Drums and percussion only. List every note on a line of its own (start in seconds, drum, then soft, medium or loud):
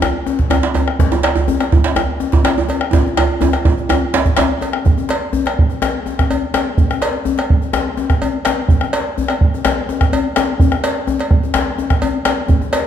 0.02 bombo rim loud
0.02 cowbell soft
0.02 djembe slap soft
0.02 djembe tone medium
0.02 djembe bass medium
0.26 djembe tone medium
0.39 bombo low medium
0.39 djembe slap medium
0.50 bombo rim medium
0.50 cowbell soft
0.50 djembe tone medium
0.50 djembe bass medium
0.63 djembe slap medium
0.74 cowbell soft
0.74 djembe tone medium
0.88 bombo rim medium
0.99 bombo low medium
0.99 djembe slap medium
0.99 djembe bass medium
1.12 djembe tone medium
1.23 bombo rim medium
1.23 cowbell medium
1.23 djembe slap medium
1.35 djembe tone medium
1.48 bombo rim soft
1.48 djembe tone medium
1.48 djembe bass medium
1.60 bombo rim medium
1.60 cowbell soft
1.60 djembe slap medium
1.72 bombo low loud
1.72 djembe tone medium
1.84 djembe slap medium
1.84 djembe tone medium
1.96 bombo rim loud
1.96 cowbell soft
1.96 djembe slap soft
1.96 djembe tone medium
1.96 djembe bass medium
2.20 djembe tone medium
2.32 bombo low medium
2.32 djembe slap medium
2.32 djembe tone medium
2.44 bombo rim loud
2.44 cowbell medium
2.44 djembe slap medium
2.44 djembe bass medium
2.58 djembe tone medium
2.69 cowbell medium
2.69 djembe tone medium
2.81 bombo rim medium
2.93 bombo low loud
2.93 djembe slap medium
2.93 djembe tone loud
2.93 djembe bass medium
3.06 djembe slap soft
3.06 djembe tone medium
3.17 bombo rim loud
3.17 cowbell medium
3.17 djembe slap soft
3.17 djembe tone loud
3.41 bombo rim soft
3.41 djembe tone medium
3.41 djembe tone loud
3.41 djembe bass medium
3.53 bombo rim medium
3.53 cowbell soft
3.53 djembe slap medium
3.65 bombo rim soft
3.65 bombo low loud
3.65 djembe tone loud
3.78 djembe slap soft
3.78 djembe tone medium
3.89 bombo rim loud
3.89 cowbell soft
3.89 djembe tone medium
3.89 djembe bass medium
4.02 bombo rim soft
4.02 djembe slap soft
4.13 bombo rim soft
4.13 djembe slap loud
4.13 djembe tone medium
4.26 bombo low medium
4.26 djembe slap medium
4.37 bombo rim loud
4.37 cowbell medium
4.37 djembe slap loud
4.37 djembe bass medium
4.49 bombo rim soft
4.61 cowbell medium
4.61 djembe tone medium
4.73 bombo rim medium
4.85 bombo low loud
4.85 djembe slap soft
4.85 djembe bass medium
4.98 djembe tone medium
5.09 cowbell medium
5.09 djembe slap medium
5.33 djembe tone medium
5.33 djembe bass medium
5.46 bombo rim medium
5.46 cowbell soft
5.46 djembe slap medium
5.59 bombo low loud
5.70 djembe tone medium
5.82 bombo rim loud
5.82 cowbell soft
5.82 djembe slap medium
5.82 djembe bass medium
6.06 djembe tone medium
6.19 bombo rim medium
6.19 bombo low medium
6.19 djembe slap medium
6.30 cowbell medium
6.30 djembe bass medium
6.54 bombo rim loud
6.54 cowbell medium
6.54 djembe slap medium
6.54 djembe tone medium
6.78 bombo low loud
6.78 djembe slap soft
6.78 djembe bass medium
6.90 bombo rim medium
6.90 djembe tone medium
7.02 cowbell medium
7.02 djembe slap medium
7.25 djembe tone medium
7.25 djembe bass medium
7.38 bombo rim medium
7.38 cowbell medium
7.38 djembe slap medium
7.50 bombo low loud
7.62 djembe tone medium
7.73 bombo rim loud
7.73 cowbell soft
7.73 djembe slap medium
7.73 djembe bass medium
7.97 djembe tone medium
8.10 bombo rim medium
8.10 bombo low medium
8.10 djembe slap medium
8.22 cowbell medium
8.22 djembe bass medium
8.45 bombo rim loud
8.45 cowbell medium
8.45 djembe slap medium
8.45 djembe tone medium
8.69 bombo low loud
8.69 djembe slap soft
8.69 djembe bass medium
8.81 bombo rim medium
8.81 djembe tone medium
8.93 cowbell medium
8.93 djembe slap medium
9.18 djembe tone medium
9.18 djembe bass medium
9.28 bombo rim medium
9.28 cowbell medium
9.28 djembe slap medium
9.41 bombo low loud
9.54 djembe tone medium
9.65 bombo rim loud
9.65 cowbell soft
9.65 djembe slap medium
9.65 djembe bass medium
9.89 djembe tone medium
10.01 bombo rim medium
10.01 bombo low medium
10.01 djembe slap medium
10.13 cowbell medium
10.13 djembe bass medium
10.36 bombo rim loud
10.36 cowbell medium
10.36 djembe slap medium
10.36 djembe tone medium
10.60 bombo low loud
10.60 djembe bass medium
10.72 bombo rim medium
10.72 djembe slap soft
10.72 djembe tone medium
10.84 cowbell medium
10.84 djembe slap medium
11.07 bombo rim soft
11.07 djembe tone medium
11.07 djembe bass medium
11.19 cowbell medium
11.19 djembe slap medium
11.31 bombo rim soft
11.31 bombo low loud
11.31 djembe slap soft
11.43 djembe tone medium
11.54 bombo rim loud
11.54 cowbell soft
11.54 djembe slap medium
11.54 djembe bass medium
11.78 djembe slap soft
11.78 djembe tone medium
11.90 bombo rim medium
11.90 bombo low medium
11.90 djembe slap medium
12.02 cowbell medium
12.02 djembe bass medium
12.25 bombo rim loud
12.25 cowbell medium
12.25 djembe slap medium
12.25 djembe tone medium
12.38 bombo rim soft
12.48 bombo low loud
12.48 djembe slap soft
12.48 djembe bass medium
12.62 djembe tone medium
12.73 cowbell medium
12.73 djembe slap medium